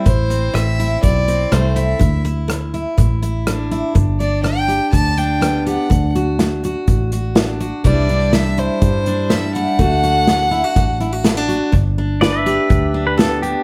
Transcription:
<<
  \new Staff \with { instrumentName = "Fiddle" } { \time 4/4 \key g \major \tempo 4 = 123 c''4 e''4 d''4 c''8 e''8~ | e''8 r2. r8 | r8 d''8 g''4 a''8 g''4 fis''8~ | fis''8 r2. r8 |
d''4 e''8 c''4. e''8 fis''8~ | fis''2.~ fis''8 r8 | r1 | }
  \new Staff \with { instrumentName = "Pedal steel guitar" } { \time 4/4 \key g \major r1 | r1 | r1 | r1 |
r1 | r1 | r4 <b' d''>2. | }
  \new Staff \with { instrumentName = "Pedal steel guitar" } { \time 4/4 \key g \major r1 | r1 | r1 | r1 |
r1 | r1 | r4 d''16 e''4. b'16 a'8 g'8 | }
  \new Staff \with { instrumentName = "Steel-string acoustic guitar" } { \time 4/4 \key g \major << { e'8 c'4 e'4 c'8 a8 e'8~ | e'8 e'4 e'4 e'8 d'8 e'8 | r8 d'4 g'4 d'8 b8 g'8 | r8 fis'4 fis'4 fis'8 d'8 fis'8 |
<e g d' e'>8 d'4 e'4 d'8 g8 e'8 | <a d' fis'>8 fis'4 e'16 fis'8. e'16 fis'16 b16 d'16 fis'8 | r8 d'4 g'4 d'8 b8 d'8 | } \\ { a,4 e4 e,4 e4 | d4 a4 a,4 a4 | g,4 d4 g,4 d4 | d4 a4 a,4 a4 |
c4 e4 g,4 e4 | d4 a4 a,4 a4 | g,4 d4 g,4 d4 | } >> }
  \new Staff \with { instrumentName = "Fingered electric bass" } { \clef bass \time 4/4 \key g \major a,,4 a,,4 b,,4 c,4 | d,2 a,,2 | g,,2 d,2 | d,2 a,,2 |
c,2 g,2 | d,2 a,,2 | g,,2 d,2 | }
  \new DrumStaff \with { instrumentName = "Drums" } \drummode { \time 4/4 <hh bd>8 hh8 <hh ss>8 hh8 <hh bd>8 hh8 <hh ss>8 hh8 | <hh bd>8 hh8 <hh ss>8 hh8 <hh bd>8 hh8 <hh ss>8 hh8 | <hh bd>8 hh8 <hh ss>8 hh8 <hh bd>8 hh8 <hh ss>8 hh8 | <hh bd>8 hh8 <hh sn>8 hh8 <hh bd>8 hh8 <hh sn>8 hh8 |
<hh bd>8 hh8 <hh sn>8 hh8 <hh bd>8 hh8 <hh sn>8 hh8 | <hh bd>8 hh8 <hh sn>8 hh8 <hh bd>8 hh8 <hh sn>8 hh8 | <hh bd>4 <hh sn>8 hh8 <hh bd>4 <hh sn>8 hh8 | }
>>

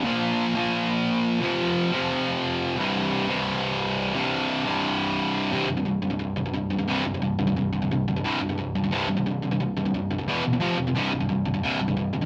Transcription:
\new Staff \with { instrumentName = "Distorted electric guitar" } { \clef bass \time 4/4 \tempo 4 = 176 <bes, f bes>4. <bes, f bes>2~ <bes, f bes>8 | <f, c f>4. <f, c f>2~ <f, c f>8 | <c, g, c>4. <c, g, c>2~ <c, g, c>8 | <c, g, c>4. <c, g, c>2~ <c, g, c>8 |
<c, g, c>8 <c, g,>16 <c, g,>16 <c, g,>8 <c, g,>16 <c, g,>16 <c, g,>8 <c, g,>16 <c, g,>16 <c, g,>8 <c, g,>16 <c, g,>16 | <c, g, c>8 <c, g,>16 <c, g,>16 <c, g,>8 <c, g,>16 <c, g,>16 <c, g,>8 <c, g,>16 <c, g,>16 <c, g,>8 <c, g,>16 <c, g,>16 | <c, g, c>8 <c, g,>16 <c, g,>16 <c, g,>8 <c, g,>16 <c, g,>16 <c, g, c>8 <c, g,>16 <c, g,>16 <c, g,>8 <c, g,>16 <c, g,>16 | <c, g,>8 <c, g,>16 <c, g,>16 <c, g,>8 <c, g,>16 <c, g,>16 <e, b, e>8 <e, b,>16 <e, b,>16 <f, c f>8 <f, c>16 <f, c>16 |
<c, g, c>8 <c, g,>16 <c, g,>16 <c, g,>8 <c, g,>16 <c, g,>16 <c, g, c>8 <c, g,>16 <c, g,>16 <c, g,>8 <c, g,>16 <c, g,>16 | }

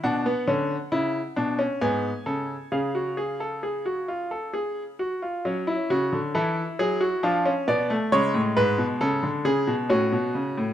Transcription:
<<
  \new Staff \with { instrumentName = "Grand piano" } { \time 3/4 \key fis \minor \tempo 4 = 67 << { fis''2 gis''4 | eis''2~ eis''8 r8 | r16 e'16 fis'8 a'8 gis'16 fis'16 f'8 d''8 | cis''8 b'8 a'8 gis'8 fis'4 | } \\ { d'16 b16 cis'8 e'8 d'16 cis'16 b8 a'8 | gis'16 fis'16 gis'16 a'16 gis'16 fis'16 eis'16 a'16 gis'8 fis'16 eis'16 | cis'4 e'4 d'16 cis'16 b16 a16 | gis2 cis'4 | } >> }
  \new Staff \with { instrumentName = "Grand piano" } { \clef bass \time 3/4 \key fis \minor b,8 d8 cis8 b,8 gis,8 cis8 | cis2~ cis8 r8 | fis8 cis16 d16 e8 fis8 f8 b,8 | cis16 a,16 gis,16 b,16 cis16 d16 cis16 b,16 a,16 b,16 cis16 a,16 | }
>>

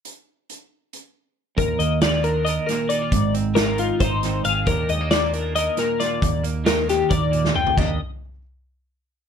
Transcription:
<<
  \new Staff \with { instrumentName = "Clean electric guitar" } { \time 7/8 \key ees \major \tempo 4 = 136 r2. r8 | bes'8 ees''8 d''8 bes'8 ees''8 bes'8 d''8~ | d''8 r8 bes'8 f'8 c''4 f''8 | bes'8 ees''8 d''8 bes'8 ees''8 bes'8 d''8~ |
d''8 r8 bes'8 g'8 d''4 g''8 | ees''8 r2. | }
  \new Staff \with { instrumentName = "Clean electric guitar" } { \time 7/8 \key ees \major << { r2. r8 | r8 bes8 f'8 d'8 bes'8 bes8 ees'16 f'16 | r8 c'8 f'8 ees'8 ees'8 c'8 aes'8 | <ees bes d' g'>8 aes16 bes16 f'8 d'8 bes'8 bes8 f'8 |
r8 bes8 f'8 d'8 bes'8 bes8 f'8 | <ees bes d' g'>8 r2. | } \\ { r2. r8 | ees,4 ees4. bes,4 | aes,4 ees4. ees4 | ees,4 ees4. bes,4 |
ees,4 ees4. bes,4 | ees,8 r2. | } >> }
  \new Staff \with { instrumentName = "Fingered electric bass" } { \clef bass \time 7/8 \key ees \major r2. r8 | ees,8 ees,2 r4 | aes,,2 aes,,4 aes,,8 | ees,8 ees,2 r4 |
ees,2 ees,4 ees,8 | ees,8 r2. | }
  \new DrumStaff \with { instrumentName = "Drums" } \drummode { \time 7/8 hh4 hh4 hh4. | <hh bd>8 hh8 <hh sn>8 hh8 hh8 <hh sn>8 hh8 | <hh bd>8 hh8 <hh sn>8 hh8 <hh bd>8 <hh sn>8 hh8 | <hh bd>8 hh8 <hh sn>8 hh8 hh8 <hh sn>8 <hh sn>8 |
<hh bd>8 hh8 <hh sn>8 <hh sn>8 <hh bd>8 hh16 sn16 toml16 tomfh16 | <cymc bd tomfh>4 r4 r4. | }
>>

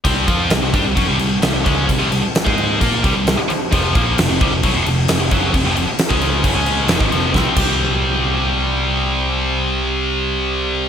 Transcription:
<<
  \new Staff \with { instrumentName = "Distorted electric guitar" } { \clef bass \time 4/4 \key f \dorian \tempo 4 = 133 <c g c'>8 <f c' f'>8 <c g>16 <c g>16 <g d'>16 <c g>16 <fis des'>16 <c g>16 <c g>8 <c g>16 <c g>16 <des aes des'>8 | <c g>16 <c g>16 <c g>16 r8 <aes ees' aes'>8. <bes f' bes'>8 <c g>16 <c g>8 r8. | <f, c f>8 <bes, f bes>8 <f, c>16 <f, c>16 <c g>16 <f, c>16 <b, fis>16 <f, c>16 <f, c>8 <f, c>16 <f, c>16 <fis, des fis>8 | <f, c>16 <f, c>16 <f, c>16 r8 <des aes des'>8. <fis, des>16 <des aes des'>8. <f, c>16 <aes, ees>16 <f, c f>8 |
<c g c'>16 r16 <c g c'>2.~ <c g c'>8~ | <c g c'>1 | }
  \new Staff \with { instrumentName = "Picked electric bass" } { \clef bass \time 4/4 \key f \dorian c,8 f,8 c,16 c,16 g,16 c,16 fis,16 c,16 c,8 c,16 c,16 des,8 | c,16 c,16 c,16 r8 aes,8. bes,8 c,16 c,8 r8. | f,,8 bes,,8 f,,16 f,,16 c,16 f,,16 b,,16 f,,16 f,,8 f,,16 f,,16 fis,,8 | f,,16 f,,16 f,,16 r8 des,8. fis,,16 des,8. f,,16 aes,,16 f,,8 |
c,16 r16 c,2.~ c,8~ | c,1 | }
  \new DrumStaff \with { instrumentName = "Drums" } \drummode { \time 4/4 <cymc bd>8 <cymc bd>8 <cymc sn>8 <cymc bd>8 <cymc bd>8 cymc8 <cymc sn>8 <cymc bd>8 | <cymc bd>8 cymc8 <cymc sn>16 bd16 cymc8 <cymc bd>8 <cymc bd>8 <cymc sn>8 cymc8 | <cymc bd>8 <cymc bd>8 <cymc sn>8 <cymc bd>8 <cymc bd>8 cymc8 <cymc sn>8 <cymc bd>8 | <cymc bd>8 cymc8 <cymc sn>16 bd16 cymc8 <cymc bd>8 cymc8 <cymc sn>16 bd16 cymc8 |
<bd sn>8 <cymc bd>8 r4 r4 r4 | r4 r4 r4 r4 | }
>>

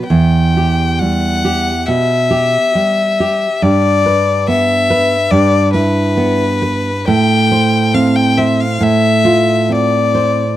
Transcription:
<<
  \new Staff \with { instrumentName = "Violin" } { \time 4/4 \key e \minor \tempo 4 = 69 g''4 fis''4 e''2 | d''4 e''4 d''8 b'4. | g''4 f''16 g''16 e''16 f''16 e''4 d''4 | }
  \new Staff \with { instrumentName = "Nylon-string guitar" } { \time 4/4 \key e \minor e,8 g'8 g8 g'8 b,8 g'8 g8 g'8 | g,8 b'8 b8 b'8 g,8 e'8 b8 b'8 | a,8 c''8 c'8 c''8 a,8 f'8 c'8 c''8 | }
>>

